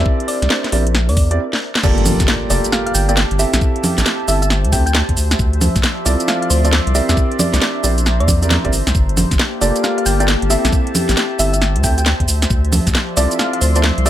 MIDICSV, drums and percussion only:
0, 0, Header, 1, 2, 480
1, 0, Start_track
1, 0, Tempo, 444444
1, 64, Time_signature, 4, 2, 24, 8
1, 15226, End_track
2, 0, Start_track
2, 0, Title_t, "Drums"
2, 62, Note_on_c, 9, 36, 117
2, 170, Note_off_c, 9, 36, 0
2, 217, Note_on_c, 9, 42, 38
2, 303, Note_on_c, 9, 46, 110
2, 325, Note_off_c, 9, 42, 0
2, 411, Note_off_c, 9, 46, 0
2, 457, Note_on_c, 9, 40, 34
2, 457, Note_on_c, 9, 42, 70
2, 543, Note_on_c, 9, 38, 113
2, 565, Note_off_c, 9, 40, 0
2, 565, Note_off_c, 9, 42, 0
2, 651, Note_off_c, 9, 38, 0
2, 696, Note_on_c, 9, 38, 60
2, 696, Note_on_c, 9, 42, 38
2, 781, Note_on_c, 9, 46, 113
2, 804, Note_off_c, 9, 38, 0
2, 804, Note_off_c, 9, 42, 0
2, 889, Note_off_c, 9, 46, 0
2, 936, Note_on_c, 9, 42, 70
2, 1021, Note_on_c, 9, 40, 71
2, 1044, Note_off_c, 9, 42, 0
2, 1129, Note_off_c, 9, 40, 0
2, 1175, Note_on_c, 9, 46, 67
2, 1260, Note_off_c, 9, 46, 0
2, 1260, Note_on_c, 9, 46, 115
2, 1262, Note_on_c, 9, 36, 100
2, 1368, Note_off_c, 9, 46, 0
2, 1370, Note_off_c, 9, 36, 0
2, 1415, Note_on_c, 9, 42, 67
2, 1523, Note_off_c, 9, 42, 0
2, 1655, Note_on_c, 9, 38, 73
2, 1763, Note_off_c, 9, 38, 0
2, 1895, Note_on_c, 9, 38, 104
2, 1981, Note_on_c, 9, 49, 105
2, 1981, Note_on_c, 9, 82, 31
2, 1982, Note_on_c, 9, 36, 121
2, 2003, Note_off_c, 9, 38, 0
2, 2089, Note_off_c, 9, 49, 0
2, 2089, Note_off_c, 9, 82, 0
2, 2090, Note_off_c, 9, 36, 0
2, 2136, Note_on_c, 9, 42, 37
2, 2221, Note_on_c, 9, 46, 110
2, 2221, Note_on_c, 9, 63, 75
2, 2221, Note_on_c, 9, 82, 69
2, 2244, Note_off_c, 9, 42, 0
2, 2329, Note_off_c, 9, 46, 0
2, 2329, Note_off_c, 9, 63, 0
2, 2329, Note_off_c, 9, 82, 0
2, 2375, Note_on_c, 9, 40, 35
2, 2375, Note_on_c, 9, 42, 70
2, 2375, Note_on_c, 9, 82, 44
2, 2376, Note_on_c, 9, 36, 109
2, 2463, Note_off_c, 9, 82, 0
2, 2463, Note_on_c, 9, 38, 122
2, 2463, Note_on_c, 9, 82, 31
2, 2483, Note_off_c, 9, 40, 0
2, 2483, Note_off_c, 9, 42, 0
2, 2484, Note_off_c, 9, 36, 0
2, 2571, Note_off_c, 9, 38, 0
2, 2571, Note_off_c, 9, 82, 0
2, 2702, Note_on_c, 9, 46, 106
2, 2702, Note_on_c, 9, 82, 72
2, 2810, Note_off_c, 9, 46, 0
2, 2810, Note_off_c, 9, 82, 0
2, 2856, Note_on_c, 9, 42, 68
2, 2856, Note_on_c, 9, 82, 43
2, 2942, Note_off_c, 9, 82, 0
2, 2942, Note_on_c, 9, 40, 74
2, 2942, Note_on_c, 9, 82, 31
2, 2964, Note_off_c, 9, 42, 0
2, 3050, Note_off_c, 9, 40, 0
2, 3050, Note_off_c, 9, 82, 0
2, 3095, Note_on_c, 9, 42, 55
2, 3182, Note_on_c, 9, 46, 121
2, 3182, Note_on_c, 9, 82, 75
2, 3203, Note_off_c, 9, 42, 0
2, 3290, Note_off_c, 9, 46, 0
2, 3290, Note_off_c, 9, 82, 0
2, 3337, Note_on_c, 9, 42, 65
2, 3337, Note_on_c, 9, 82, 38
2, 3424, Note_off_c, 9, 82, 0
2, 3424, Note_on_c, 9, 38, 124
2, 3424, Note_on_c, 9, 82, 31
2, 3445, Note_off_c, 9, 42, 0
2, 3532, Note_off_c, 9, 38, 0
2, 3532, Note_off_c, 9, 82, 0
2, 3577, Note_on_c, 9, 42, 52
2, 3663, Note_on_c, 9, 46, 109
2, 3663, Note_on_c, 9, 82, 70
2, 3685, Note_off_c, 9, 42, 0
2, 3771, Note_off_c, 9, 46, 0
2, 3771, Note_off_c, 9, 82, 0
2, 3818, Note_on_c, 9, 40, 74
2, 3818, Note_on_c, 9, 42, 67
2, 3818, Note_on_c, 9, 82, 43
2, 3903, Note_off_c, 9, 82, 0
2, 3903, Note_on_c, 9, 36, 127
2, 3903, Note_on_c, 9, 82, 32
2, 3926, Note_off_c, 9, 40, 0
2, 3926, Note_off_c, 9, 42, 0
2, 4011, Note_off_c, 9, 36, 0
2, 4011, Note_off_c, 9, 82, 0
2, 4058, Note_on_c, 9, 42, 37
2, 4144, Note_on_c, 9, 46, 105
2, 4144, Note_on_c, 9, 63, 79
2, 4144, Note_on_c, 9, 82, 72
2, 4166, Note_off_c, 9, 42, 0
2, 4252, Note_off_c, 9, 46, 0
2, 4252, Note_off_c, 9, 63, 0
2, 4252, Note_off_c, 9, 82, 0
2, 4299, Note_on_c, 9, 38, 67
2, 4299, Note_on_c, 9, 40, 34
2, 4299, Note_on_c, 9, 42, 69
2, 4299, Note_on_c, 9, 82, 43
2, 4384, Note_off_c, 9, 38, 0
2, 4384, Note_off_c, 9, 82, 0
2, 4384, Note_on_c, 9, 38, 117
2, 4384, Note_on_c, 9, 82, 31
2, 4407, Note_off_c, 9, 40, 0
2, 4407, Note_off_c, 9, 42, 0
2, 4492, Note_off_c, 9, 38, 0
2, 4492, Note_off_c, 9, 82, 0
2, 4623, Note_on_c, 9, 46, 108
2, 4623, Note_on_c, 9, 82, 73
2, 4731, Note_off_c, 9, 46, 0
2, 4731, Note_off_c, 9, 82, 0
2, 4779, Note_on_c, 9, 42, 65
2, 4779, Note_on_c, 9, 82, 42
2, 4863, Note_off_c, 9, 82, 0
2, 4863, Note_on_c, 9, 40, 74
2, 4863, Note_on_c, 9, 82, 32
2, 4887, Note_off_c, 9, 42, 0
2, 4971, Note_off_c, 9, 40, 0
2, 4971, Note_off_c, 9, 82, 0
2, 5017, Note_on_c, 9, 42, 53
2, 5104, Note_on_c, 9, 36, 109
2, 5104, Note_on_c, 9, 46, 113
2, 5104, Note_on_c, 9, 82, 73
2, 5125, Note_off_c, 9, 42, 0
2, 5212, Note_off_c, 9, 36, 0
2, 5212, Note_off_c, 9, 46, 0
2, 5212, Note_off_c, 9, 82, 0
2, 5257, Note_on_c, 9, 42, 61
2, 5257, Note_on_c, 9, 82, 40
2, 5342, Note_off_c, 9, 82, 0
2, 5342, Note_on_c, 9, 38, 125
2, 5342, Note_on_c, 9, 82, 32
2, 5365, Note_off_c, 9, 42, 0
2, 5450, Note_off_c, 9, 38, 0
2, 5450, Note_off_c, 9, 82, 0
2, 5496, Note_on_c, 9, 42, 50
2, 5498, Note_on_c, 9, 36, 62
2, 5582, Note_on_c, 9, 46, 104
2, 5582, Note_on_c, 9, 82, 71
2, 5604, Note_off_c, 9, 42, 0
2, 5606, Note_off_c, 9, 36, 0
2, 5690, Note_off_c, 9, 46, 0
2, 5690, Note_off_c, 9, 82, 0
2, 5737, Note_on_c, 9, 40, 75
2, 5737, Note_on_c, 9, 42, 66
2, 5737, Note_on_c, 9, 82, 40
2, 5824, Note_off_c, 9, 82, 0
2, 5824, Note_on_c, 9, 36, 127
2, 5824, Note_on_c, 9, 82, 32
2, 5845, Note_off_c, 9, 40, 0
2, 5845, Note_off_c, 9, 42, 0
2, 5932, Note_off_c, 9, 36, 0
2, 5932, Note_off_c, 9, 82, 0
2, 5976, Note_on_c, 9, 42, 37
2, 6063, Note_on_c, 9, 46, 101
2, 6063, Note_on_c, 9, 63, 82
2, 6063, Note_on_c, 9, 82, 72
2, 6084, Note_off_c, 9, 42, 0
2, 6171, Note_off_c, 9, 46, 0
2, 6171, Note_off_c, 9, 63, 0
2, 6171, Note_off_c, 9, 82, 0
2, 6217, Note_on_c, 9, 36, 110
2, 6218, Note_on_c, 9, 40, 33
2, 6218, Note_on_c, 9, 42, 67
2, 6218, Note_on_c, 9, 82, 45
2, 6303, Note_off_c, 9, 82, 0
2, 6303, Note_on_c, 9, 38, 121
2, 6303, Note_on_c, 9, 82, 30
2, 6325, Note_off_c, 9, 36, 0
2, 6326, Note_off_c, 9, 40, 0
2, 6326, Note_off_c, 9, 42, 0
2, 6411, Note_off_c, 9, 38, 0
2, 6411, Note_off_c, 9, 82, 0
2, 6544, Note_on_c, 9, 46, 100
2, 6544, Note_on_c, 9, 82, 75
2, 6652, Note_off_c, 9, 46, 0
2, 6652, Note_off_c, 9, 82, 0
2, 6696, Note_on_c, 9, 42, 65
2, 6696, Note_on_c, 9, 82, 42
2, 6784, Note_off_c, 9, 82, 0
2, 6784, Note_on_c, 9, 40, 73
2, 6784, Note_on_c, 9, 82, 32
2, 6804, Note_off_c, 9, 42, 0
2, 6892, Note_off_c, 9, 40, 0
2, 6892, Note_off_c, 9, 82, 0
2, 6939, Note_on_c, 9, 42, 50
2, 7024, Note_on_c, 9, 46, 110
2, 7024, Note_on_c, 9, 82, 73
2, 7047, Note_off_c, 9, 42, 0
2, 7132, Note_off_c, 9, 46, 0
2, 7132, Note_off_c, 9, 82, 0
2, 7178, Note_on_c, 9, 42, 63
2, 7178, Note_on_c, 9, 82, 41
2, 7265, Note_off_c, 9, 82, 0
2, 7265, Note_on_c, 9, 38, 127
2, 7265, Note_on_c, 9, 82, 30
2, 7286, Note_off_c, 9, 42, 0
2, 7373, Note_off_c, 9, 38, 0
2, 7373, Note_off_c, 9, 82, 0
2, 7420, Note_on_c, 9, 42, 51
2, 7505, Note_on_c, 9, 46, 103
2, 7505, Note_on_c, 9, 82, 71
2, 7528, Note_off_c, 9, 42, 0
2, 7613, Note_off_c, 9, 46, 0
2, 7613, Note_off_c, 9, 82, 0
2, 7660, Note_on_c, 9, 40, 69
2, 7660, Note_on_c, 9, 42, 67
2, 7660, Note_on_c, 9, 82, 42
2, 7744, Note_on_c, 9, 36, 127
2, 7747, Note_off_c, 9, 82, 0
2, 7747, Note_on_c, 9, 82, 34
2, 7768, Note_off_c, 9, 40, 0
2, 7768, Note_off_c, 9, 42, 0
2, 7852, Note_off_c, 9, 36, 0
2, 7855, Note_off_c, 9, 82, 0
2, 7900, Note_on_c, 9, 42, 37
2, 7985, Note_on_c, 9, 46, 97
2, 7985, Note_on_c, 9, 63, 86
2, 7985, Note_on_c, 9, 82, 77
2, 8008, Note_off_c, 9, 42, 0
2, 8093, Note_off_c, 9, 46, 0
2, 8093, Note_off_c, 9, 63, 0
2, 8093, Note_off_c, 9, 82, 0
2, 8140, Note_on_c, 9, 38, 66
2, 8140, Note_on_c, 9, 40, 33
2, 8140, Note_on_c, 9, 42, 71
2, 8140, Note_on_c, 9, 82, 46
2, 8226, Note_off_c, 9, 38, 0
2, 8226, Note_off_c, 9, 82, 0
2, 8226, Note_on_c, 9, 38, 122
2, 8226, Note_on_c, 9, 82, 33
2, 8248, Note_off_c, 9, 40, 0
2, 8248, Note_off_c, 9, 42, 0
2, 8334, Note_off_c, 9, 38, 0
2, 8334, Note_off_c, 9, 82, 0
2, 8465, Note_on_c, 9, 46, 103
2, 8465, Note_on_c, 9, 82, 78
2, 8573, Note_off_c, 9, 46, 0
2, 8573, Note_off_c, 9, 82, 0
2, 8618, Note_on_c, 9, 42, 65
2, 8618, Note_on_c, 9, 82, 46
2, 8706, Note_off_c, 9, 82, 0
2, 8706, Note_on_c, 9, 40, 71
2, 8706, Note_on_c, 9, 82, 32
2, 8726, Note_off_c, 9, 42, 0
2, 8814, Note_off_c, 9, 40, 0
2, 8814, Note_off_c, 9, 82, 0
2, 8861, Note_on_c, 9, 42, 53
2, 8944, Note_on_c, 9, 36, 114
2, 8946, Note_on_c, 9, 46, 106
2, 8946, Note_on_c, 9, 63, 69
2, 8946, Note_on_c, 9, 82, 81
2, 8969, Note_off_c, 9, 42, 0
2, 9052, Note_off_c, 9, 36, 0
2, 9054, Note_off_c, 9, 46, 0
2, 9054, Note_off_c, 9, 63, 0
2, 9054, Note_off_c, 9, 82, 0
2, 9100, Note_on_c, 9, 42, 61
2, 9100, Note_on_c, 9, 82, 42
2, 9186, Note_off_c, 9, 82, 0
2, 9186, Note_on_c, 9, 38, 119
2, 9186, Note_on_c, 9, 63, 65
2, 9186, Note_on_c, 9, 82, 33
2, 9208, Note_off_c, 9, 42, 0
2, 9294, Note_off_c, 9, 38, 0
2, 9294, Note_off_c, 9, 63, 0
2, 9294, Note_off_c, 9, 82, 0
2, 9337, Note_on_c, 9, 36, 66
2, 9340, Note_on_c, 9, 42, 50
2, 9426, Note_on_c, 9, 46, 97
2, 9426, Note_on_c, 9, 82, 76
2, 9445, Note_off_c, 9, 36, 0
2, 9448, Note_off_c, 9, 42, 0
2, 9534, Note_off_c, 9, 46, 0
2, 9534, Note_off_c, 9, 82, 0
2, 9579, Note_on_c, 9, 40, 70
2, 9579, Note_on_c, 9, 42, 66
2, 9579, Note_on_c, 9, 82, 44
2, 9664, Note_on_c, 9, 36, 125
2, 9666, Note_off_c, 9, 82, 0
2, 9666, Note_on_c, 9, 82, 33
2, 9687, Note_off_c, 9, 40, 0
2, 9687, Note_off_c, 9, 42, 0
2, 9772, Note_off_c, 9, 36, 0
2, 9774, Note_off_c, 9, 82, 0
2, 9820, Note_on_c, 9, 42, 37
2, 9906, Note_on_c, 9, 46, 101
2, 9906, Note_on_c, 9, 63, 84
2, 9906, Note_on_c, 9, 82, 76
2, 9928, Note_off_c, 9, 42, 0
2, 10014, Note_off_c, 9, 46, 0
2, 10014, Note_off_c, 9, 63, 0
2, 10014, Note_off_c, 9, 82, 0
2, 10058, Note_on_c, 9, 36, 106
2, 10060, Note_on_c, 9, 40, 32
2, 10060, Note_on_c, 9, 42, 68
2, 10060, Note_on_c, 9, 82, 48
2, 10146, Note_off_c, 9, 82, 0
2, 10146, Note_on_c, 9, 38, 118
2, 10146, Note_on_c, 9, 82, 33
2, 10166, Note_off_c, 9, 36, 0
2, 10168, Note_off_c, 9, 40, 0
2, 10168, Note_off_c, 9, 42, 0
2, 10254, Note_off_c, 9, 38, 0
2, 10254, Note_off_c, 9, 82, 0
2, 10385, Note_on_c, 9, 46, 102
2, 10385, Note_on_c, 9, 82, 82
2, 10493, Note_off_c, 9, 46, 0
2, 10493, Note_off_c, 9, 82, 0
2, 10537, Note_on_c, 9, 42, 66
2, 10537, Note_on_c, 9, 82, 44
2, 10626, Note_off_c, 9, 82, 0
2, 10626, Note_on_c, 9, 40, 65
2, 10626, Note_on_c, 9, 82, 35
2, 10645, Note_off_c, 9, 42, 0
2, 10734, Note_off_c, 9, 40, 0
2, 10734, Note_off_c, 9, 82, 0
2, 10779, Note_on_c, 9, 42, 57
2, 10865, Note_on_c, 9, 46, 106
2, 10865, Note_on_c, 9, 82, 80
2, 10887, Note_off_c, 9, 42, 0
2, 10973, Note_off_c, 9, 46, 0
2, 10973, Note_off_c, 9, 82, 0
2, 11019, Note_on_c, 9, 42, 63
2, 11019, Note_on_c, 9, 82, 43
2, 11104, Note_off_c, 9, 82, 0
2, 11104, Note_on_c, 9, 38, 115
2, 11104, Note_on_c, 9, 82, 34
2, 11127, Note_off_c, 9, 42, 0
2, 11212, Note_off_c, 9, 38, 0
2, 11212, Note_off_c, 9, 82, 0
2, 11257, Note_on_c, 9, 42, 53
2, 11344, Note_on_c, 9, 46, 101
2, 11344, Note_on_c, 9, 82, 76
2, 11365, Note_off_c, 9, 42, 0
2, 11452, Note_off_c, 9, 46, 0
2, 11452, Note_off_c, 9, 82, 0
2, 11500, Note_on_c, 9, 40, 67
2, 11500, Note_on_c, 9, 42, 68
2, 11500, Note_on_c, 9, 82, 47
2, 11583, Note_on_c, 9, 36, 117
2, 11585, Note_off_c, 9, 82, 0
2, 11585, Note_on_c, 9, 82, 34
2, 11608, Note_off_c, 9, 40, 0
2, 11608, Note_off_c, 9, 42, 0
2, 11691, Note_off_c, 9, 36, 0
2, 11693, Note_off_c, 9, 82, 0
2, 11738, Note_on_c, 9, 42, 41
2, 11826, Note_on_c, 9, 46, 104
2, 11826, Note_on_c, 9, 63, 79
2, 11826, Note_on_c, 9, 82, 78
2, 11846, Note_off_c, 9, 42, 0
2, 11934, Note_off_c, 9, 46, 0
2, 11934, Note_off_c, 9, 63, 0
2, 11934, Note_off_c, 9, 82, 0
2, 11978, Note_on_c, 9, 38, 62
2, 11978, Note_on_c, 9, 40, 31
2, 11978, Note_on_c, 9, 42, 76
2, 11978, Note_on_c, 9, 82, 47
2, 12065, Note_off_c, 9, 38, 0
2, 12065, Note_off_c, 9, 82, 0
2, 12065, Note_on_c, 9, 38, 111
2, 12065, Note_on_c, 9, 82, 33
2, 12086, Note_off_c, 9, 40, 0
2, 12086, Note_off_c, 9, 42, 0
2, 12173, Note_off_c, 9, 38, 0
2, 12173, Note_off_c, 9, 82, 0
2, 12305, Note_on_c, 9, 46, 107
2, 12305, Note_on_c, 9, 82, 80
2, 12413, Note_off_c, 9, 46, 0
2, 12413, Note_off_c, 9, 82, 0
2, 12459, Note_on_c, 9, 42, 69
2, 12459, Note_on_c, 9, 82, 47
2, 12545, Note_off_c, 9, 82, 0
2, 12545, Note_on_c, 9, 40, 67
2, 12545, Note_on_c, 9, 82, 36
2, 12567, Note_off_c, 9, 42, 0
2, 12653, Note_off_c, 9, 40, 0
2, 12653, Note_off_c, 9, 82, 0
2, 12698, Note_on_c, 9, 42, 57
2, 12783, Note_on_c, 9, 46, 112
2, 12783, Note_on_c, 9, 82, 84
2, 12784, Note_on_c, 9, 36, 102
2, 12806, Note_off_c, 9, 42, 0
2, 12891, Note_off_c, 9, 46, 0
2, 12891, Note_off_c, 9, 82, 0
2, 12892, Note_off_c, 9, 36, 0
2, 12938, Note_on_c, 9, 42, 67
2, 12938, Note_on_c, 9, 82, 43
2, 13025, Note_off_c, 9, 82, 0
2, 13025, Note_on_c, 9, 38, 112
2, 13025, Note_on_c, 9, 82, 33
2, 13046, Note_off_c, 9, 42, 0
2, 13133, Note_off_c, 9, 38, 0
2, 13133, Note_off_c, 9, 82, 0
2, 13177, Note_on_c, 9, 36, 61
2, 13178, Note_on_c, 9, 42, 54
2, 13264, Note_on_c, 9, 46, 103
2, 13264, Note_on_c, 9, 82, 78
2, 13285, Note_off_c, 9, 36, 0
2, 13286, Note_off_c, 9, 42, 0
2, 13372, Note_off_c, 9, 46, 0
2, 13372, Note_off_c, 9, 82, 0
2, 13417, Note_on_c, 9, 40, 66
2, 13417, Note_on_c, 9, 42, 72
2, 13417, Note_on_c, 9, 82, 45
2, 13503, Note_off_c, 9, 82, 0
2, 13503, Note_on_c, 9, 82, 34
2, 13504, Note_on_c, 9, 36, 120
2, 13525, Note_off_c, 9, 40, 0
2, 13525, Note_off_c, 9, 42, 0
2, 13611, Note_off_c, 9, 82, 0
2, 13612, Note_off_c, 9, 36, 0
2, 13658, Note_on_c, 9, 42, 39
2, 13743, Note_on_c, 9, 46, 110
2, 13743, Note_on_c, 9, 63, 76
2, 13743, Note_on_c, 9, 82, 76
2, 13766, Note_off_c, 9, 42, 0
2, 13851, Note_off_c, 9, 46, 0
2, 13851, Note_off_c, 9, 63, 0
2, 13851, Note_off_c, 9, 82, 0
2, 13898, Note_on_c, 9, 36, 101
2, 13899, Note_on_c, 9, 40, 32
2, 13899, Note_on_c, 9, 42, 75
2, 13899, Note_on_c, 9, 82, 45
2, 13984, Note_off_c, 9, 82, 0
2, 13984, Note_on_c, 9, 38, 111
2, 13984, Note_on_c, 9, 82, 32
2, 14006, Note_off_c, 9, 36, 0
2, 14007, Note_off_c, 9, 40, 0
2, 14007, Note_off_c, 9, 42, 0
2, 14092, Note_off_c, 9, 38, 0
2, 14092, Note_off_c, 9, 82, 0
2, 14223, Note_on_c, 9, 46, 113
2, 14223, Note_on_c, 9, 82, 74
2, 14331, Note_off_c, 9, 46, 0
2, 14331, Note_off_c, 9, 82, 0
2, 14378, Note_on_c, 9, 42, 68
2, 14378, Note_on_c, 9, 82, 46
2, 14464, Note_off_c, 9, 82, 0
2, 14464, Note_on_c, 9, 40, 70
2, 14464, Note_on_c, 9, 82, 34
2, 14486, Note_off_c, 9, 42, 0
2, 14572, Note_off_c, 9, 40, 0
2, 14572, Note_off_c, 9, 82, 0
2, 14617, Note_on_c, 9, 42, 60
2, 14704, Note_on_c, 9, 46, 112
2, 14704, Note_on_c, 9, 82, 80
2, 14725, Note_off_c, 9, 42, 0
2, 14812, Note_off_c, 9, 46, 0
2, 14812, Note_off_c, 9, 82, 0
2, 14857, Note_on_c, 9, 42, 67
2, 14857, Note_on_c, 9, 82, 41
2, 14943, Note_off_c, 9, 82, 0
2, 14943, Note_on_c, 9, 38, 115
2, 14943, Note_on_c, 9, 82, 33
2, 14965, Note_off_c, 9, 42, 0
2, 15051, Note_off_c, 9, 38, 0
2, 15051, Note_off_c, 9, 82, 0
2, 15097, Note_on_c, 9, 42, 56
2, 15184, Note_on_c, 9, 46, 113
2, 15184, Note_on_c, 9, 82, 77
2, 15205, Note_off_c, 9, 42, 0
2, 15226, Note_off_c, 9, 46, 0
2, 15226, Note_off_c, 9, 82, 0
2, 15226, End_track
0, 0, End_of_file